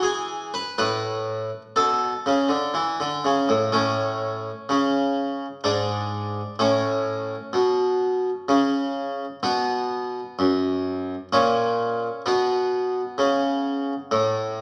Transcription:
0, 0, Header, 1, 2, 480
1, 0, Start_track
1, 0, Key_signature, 3, "major"
1, 0, Tempo, 980392
1, 375, Time_signature, 3, 2, 24, 8
1, 2292, Tempo, 947867
1, 5652, Tempo, 928793
1, 7356, End_track
2, 0, Start_track
2, 0, Title_t, "Harpsichord"
2, 0, Program_c, 0, 6
2, 0, Note_on_c, 0, 52, 66
2, 13, Note_on_c, 0, 68, 71
2, 244, Note_off_c, 0, 52, 0
2, 254, Note_off_c, 0, 68, 0
2, 264, Note_on_c, 0, 71, 73
2, 377, Note_off_c, 0, 71, 0
2, 383, Note_on_c, 0, 71, 89
2, 385, Note_on_c, 0, 45, 65
2, 730, Note_off_c, 0, 45, 0
2, 792, Note_off_c, 0, 71, 0
2, 862, Note_on_c, 0, 69, 60
2, 863, Note_on_c, 0, 47, 64
2, 1035, Note_off_c, 0, 47, 0
2, 1108, Note_on_c, 0, 49, 66
2, 1217, Note_off_c, 0, 49, 0
2, 1217, Note_on_c, 0, 50, 55
2, 1331, Note_off_c, 0, 50, 0
2, 1341, Note_on_c, 0, 52, 66
2, 1453, Note_off_c, 0, 52, 0
2, 1469, Note_on_c, 0, 50, 52
2, 1472, Note_off_c, 0, 69, 0
2, 1578, Note_off_c, 0, 50, 0
2, 1589, Note_on_c, 0, 49, 54
2, 1698, Note_off_c, 0, 49, 0
2, 1709, Note_on_c, 0, 45, 57
2, 1817, Note_off_c, 0, 45, 0
2, 1823, Note_on_c, 0, 45, 90
2, 1824, Note_on_c, 0, 61, 66
2, 2200, Note_off_c, 0, 45, 0
2, 2298, Note_on_c, 0, 49, 78
2, 2682, Note_off_c, 0, 49, 0
2, 2757, Note_off_c, 0, 61, 0
2, 2777, Note_on_c, 0, 62, 63
2, 2778, Note_on_c, 0, 44, 84
2, 3163, Note_off_c, 0, 44, 0
2, 3238, Note_off_c, 0, 62, 0
2, 3260, Note_on_c, 0, 45, 83
2, 3261, Note_on_c, 0, 61, 58
2, 3641, Note_off_c, 0, 45, 0
2, 3736, Note_on_c, 0, 47, 74
2, 4119, Note_off_c, 0, 47, 0
2, 4218, Note_on_c, 0, 49, 82
2, 4602, Note_off_c, 0, 49, 0
2, 4678, Note_off_c, 0, 61, 0
2, 4697, Note_on_c, 0, 47, 85
2, 4697, Note_on_c, 0, 59, 61
2, 5081, Note_off_c, 0, 47, 0
2, 5182, Note_on_c, 0, 42, 76
2, 5562, Note_off_c, 0, 42, 0
2, 5634, Note_off_c, 0, 59, 0
2, 5657, Note_on_c, 0, 46, 82
2, 5657, Note_on_c, 0, 61, 64
2, 6039, Note_off_c, 0, 46, 0
2, 6114, Note_off_c, 0, 61, 0
2, 6139, Note_on_c, 0, 59, 61
2, 6140, Note_on_c, 0, 47, 90
2, 6523, Note_off_c, 0, 47, 0
2, 6616, Note_on_c, 0, 49, 73
2, 7000, Note_off_c, 0, 49, 0
2, 7098, Note_on_c, 0, 45, 85
2, 7356, Note_off_c, 0, 45, 0
2, 7356, Note_off_c, 0, 59, 0
2, 7356, End_track
0, 0, End_of_file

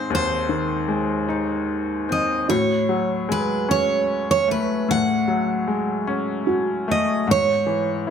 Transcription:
0, 0, Header, 1, 4, 480
1, 0, Start_track
1, 0, Tempo, 797872
1, 59, Time_signature, 6, 3, 24, 8
1, 4874, End_track
2, 0, Start_track
2, 0, Title_t, "Steel-string acoustic guitar"
2, 0, Program_c, 0, 25
2, 89, Note_on_c, 0, 72, 71
2, 1273, Note_off_c, 0, 72, 0
2, 1275, Note_on_c, 0, 75, 59
2, 1499, Note_off_c, 0, 75, 0
2, 1501, Note_on_c, 0, 73, 68
2, 1993, Note_off_c, 0, 73, 0
2, 1995, Note_on_c, 0, 71, 59
2, 2229, Note_off_c, 0, 71, 0
2, 2231, Note_on_c, 0, 73, 68
2, 2585, Note_off_c, 0, 73, 0
2, 2592, Note_on_c, 0, 73, 68
2, 2710, Note_off_c, 0, 73, 0
2, 2715, Note_on_c, 0, 71, 55
2, 2950, Note_off_c, 0, 71, 0
2, 2952, Note_on_c, 0, 78, 79
2, 4157, Note_off_c, 0, 78, 0
2, 4160, Note_on_c, 0, 75, 62
2, 4396, Note_off_c, 0, 75, 0
2, 4399, Note_on_c, 0, 73, 79
2, 4874, Note_off_c, 0, 73, 0
2, 4874, End_track
3, 0, Start_track
3, 0, Title_t, "Felt piano"
3, 0, Program_c, 1, 0
3, 1496, Note_on_c, 1, 66, 35
3, 2759, Note_off_c, 1, 66, 0
3, 3891, Note_on_c, 1, 66, 50
3, 4592, Note_off_c, 1, 66, 0
3, 4874, End_track
4, 0, Start_track
4, 0, Title_t, "Grand piano"
4, 0, Program_c, 2, 0
4, 0, Control_c, 2, 64, 127
4, 0, Note_on_c, 2, 51, 34
4, 0, Note_on_c, 2, 56, 40
4, 0, Note_on_c, 2, 60, 38
4, 0, Note_on_c, 2, 63, 43
4, 62, Note_on_c, 2, 39, 48
4, 276, Note_off_c, 2, 63, 0
4, 296, Note_off_c, 2, 51, 0
4, 296, Note_on_c, 2, 51, 31
4, 531, Note_off_c, 2, 56, 0
4, 531, Note_on_c, 2, 56, 41
4, 758, Note_off_c, 2, 60, 0
4, 773, Note_on_c, 2, 63, 41
4, 1234, Note_off_c, 2, 51, 0
4, 1257, Note_on_c, 2, 60, 37
4, 1473, Note_off_c, 2, 56, 0
4, 1476, Note_off_c, 2, 63, 0
4, 1478, Note_off_c, 2, 39, 0
4, 1492, Note_off_c, 2, 60, 0
4, 1502, Note_on_c, 2, 45, 47
4, 1509, Control_c, 2, 64, 0
4, 1614, Control_c, 2, 64, 127
4, 1738, Note_on_c, 2, 54, 36
4, 1978, Note_on_c, 2, 56, 42
4, 2218, Note_on_c, 2, 61, 41
4, 2676, Note_off_c, 2, 54, 0
4, 2695, Note_on_c, 2, 57, 38
4, 2916, Note_off_c, 2, 56, 0
4, 2918, Note_off_c, 2, 45, 0
4, 2940, Note_on_c, 2, 45, 47
4, 3156, Note_off_c, 2, 61, 0
4, 3175, Note_on_c, 2, 54, 35
4, 3415, Note_on_c, 2, 56, 39
4, 3635, Note_off_c, 2, 57, 0
4, 3654, Note_on_c, 2, 61, 40
4, 4115, Note_off_c, 2, 54, 0
4, 4138, Note_on_c, 2, 57, 42
4, 4354, Note_off_c, 2, 56, 0
4, 4356, Note_off_c, 2, 61, 0
4, 4357, Note_off_c, 2, 45, 0
4, 4373, Note_off_c, 2, 57, 0
4, 4376, Note_on_c, 2, 44, 49
4, 4388, Control_c, 2, 64, 0
4, 4495, Control_c, 2, 64, 127
4, 4612, Note_on_c, 2, 52, 36
4, 4855, Note_on_c, 2, 64, 40
4, 4874, Note_off_c, 2, 44, 0
4, 4874, Note_off_c, 2, 52, 0
4, 4874, Note_off_c, 2, 64, 0
4, 4874, End_track
0, 0, End_of_file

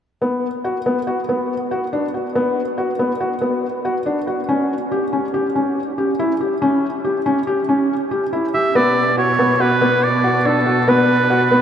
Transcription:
0, 0, Header, 1, 4, 480
1, 0, Start_track
1, 0, Key_signature, 2, "minor"
1, 0, Tempo, 426439
1, 247, Time_signature, 5, 2, 24, 8
1, 13076, End_track
2, 0, Start_track
2, 0, Title_t, "Oboe"
2, 0, Program_c, 0, 68
2, 9615, Note_on_c, 0, 76, 79
2, 9855, Note_on_c, 0, 74, 78
2, 9872, Note_off_c, 0, 76, 0
2, 10325, Note_off_c, 0, 74, 0
2, 10331, Note_on_c, 0, 73, 75
2, 10814, Note_on_c, 0, 71, 69
2, 10831, Note_off_c, 0, 73, 0
2, 11290, Note_on_c, 0, 74, 63
2, 11307, Note_off_c, 0, 71, 0
2, 11775, Note_on_c, 0, 69, 61
2, 11792, Note_off_c, 0, 74, 0
2, 12257, Note_on_c, 0, 71, 75
2, 12274, Note_off_c, 0, 69, 0
2, 13076, Note_off_c, 0, 71, 0
2, 13076, End_track
3, 0, Start_track
3, 0, Title_t, "Felt piano"
3, 0, Program_c, 1, 0
3, 243, Note_on_c, 1, 59, 52
3, 512, Note_off_c, 1, 59, 0
3, 726, Note_on_c, 1, 66, 47
3, 860, Note_off_c, 1, 66, 0
3, 968, Note_on_c, 1, 59, 49
3, 1102, Note_off_c, 1, 59, 0
3, 1206, Note_on_c, 1, 66, 52
3, 1341, Note_off_c, 1, 66, 0
3, 1450, Note_on_c, 1, 59, 47
3, 1718, Note_off_c, 1, 59, 0
3, 1928, Note_on_c, 1, 66, 46
3, 2063, Note_off_c, 1, 66, 0
3, 2170, Note_on_c, 1, 62, 52
3, 2305, Note_off_c, 1, 62, 0
3, 2410, Note_on_c, 1, 66, 42
3, 2545, Note_off_c, 1, 66, 0
3, 2650, Note_on_c, 1, 59, 57
3, 2919, Note_off_c, 1, 59, 0
3, 3126, Note_on_c, 1, 66, 47
3, 3262, Note_off_c, 1, 66, 0
3, 3368, Note_on_c, 1, 59, 51
3, 3504, Note_off_c, 1, 59, 0
3, 3607, Note_on_c, 1, 66, 52
3, 3743, Note_off_c, 1, 66, 0
3, 3843, Note_on_c, 1, 59, 48
3, 4114, Note_off_c, 1, 59, 0
3, 4332, Note_on_c, 1, 66, 54
3, 4467, Note_off_c, 1, 66, 0
3, 4568, Note_on_c, 1, 62, 57
3, 4704, Note_off_c, 1, 62, 0
3, 4810, Note_on_c, 1, 66, 42
3, 4945, Note_off_c, 1, 66, 0
3, 5050, Note_on_c, 1, 61, 60
3, 5319, Note_off_c, 1, 61, 0
3, 5533, Note_on_c, 1, 67, 50
3, 5667, Note_off_c, 1, 67, 0
3, 5772, Note_on_c, 1, 61, 46
3, 5906, Note_off_c, 1, 61, 0
3, 6010, Note_on_c, 1, 67, 54
3, 6145, Note_off_c, 1, 67, 0
3, 6253, Note_on_c, 1, 61, 48
3, 6521, Note_off_c, 1, 61, 0
3, 6730, Note_on_c, 1, 67, 47
3, 6865, Note_off_c, 1, 67, 0
3, 6972, Note_on_c, 1, 64, 58
3, 7106, Note_off_c, 1, 64, 0
3, 7210, Note_on_c, 1, 67, 43
3, 7345, Note_off_c, 1, 67, 0
3, 7449, Note_on_c, 1, 61, 61
3, 7718, Note_off_c, 1, 61, 0
3, 7930, Note_on_c, 1, 67, 50
3, 8064, Note_off_c, 1, 67, 0
3, 8171, Note_on_c, 1, 61, 57
3, 8305, Note_off_c, 1, 61, 0
3, 8409, Note_on_c, 1, 67, 56
3, 8544, Note_off_c, 1, 67, 0
3, 8654, Note_on_c, 1, 61, 53
3, 8920, Note_off_c, 1, 61, 0
3, 9130, Note_on_c, 1, 67, 48
3, 9264, Note_off_c, 1, 67, 0
3, 9373, Note_on_c, 1, 64, 54
3, 9506, Note_off_c, 1, 64, 0
3, 9615, Note_on_c, 1, 67, 49
3, 9747, Note_off_c, 1, 67, 0
3, 9852, Note_on_c, 1, 59, 67
3, 10119, Note_off_c, 1, 59, 0
3, 10326, Note_on_c, 1, 66, 48
3, 10460, Note_off_c, 1, 66, 0
3, 10568, Note_on_c, 1, 59, 54
3, 10702, Note_off_c, 1, 59, 0
3, 10805, Note_on_c, 1, 66, 51
3, 10939, Note_off_c, 1, 66, 0
3, 11046, Note_on_c, 1, 59, 53
3, 11314, Note_off_c, 1, 59, 0
3, 11527, Note_on_c, 1, 66, 53
3, 11661, Note_off_c, 1, 66, 0
3, 11765, Note_on_c, 1, 62, 59
3, 11899, Note_off_c, 1, 62, 0
3, 12001, Note_on_c, 1, 66, 48
3, 12136, Note_off_c, 1, 66, 0
3, 12243, Note_on_c, 1, 59, 62
3, 12511, Note_off_c, 1, 59, 0
3, 12721, Note_on_c, 1, 66, 59
3, 12855, Note_off_c, 1, 66, 0
3, 12959, Note_on_c, 1, 59, 53
3, 13076, Note_off_c, 1, 59, 0
3, 13076, End_track
4, 0, Start_track
4, 0, Title_t, "Cello"
4, 0, Program_c, 2, 42
4, 9851, Note_on_c, 2, 47, 49
4, 13076, Note_off_c, 2, 47, 0
4, 13076, End_track
0, 0, End_of_file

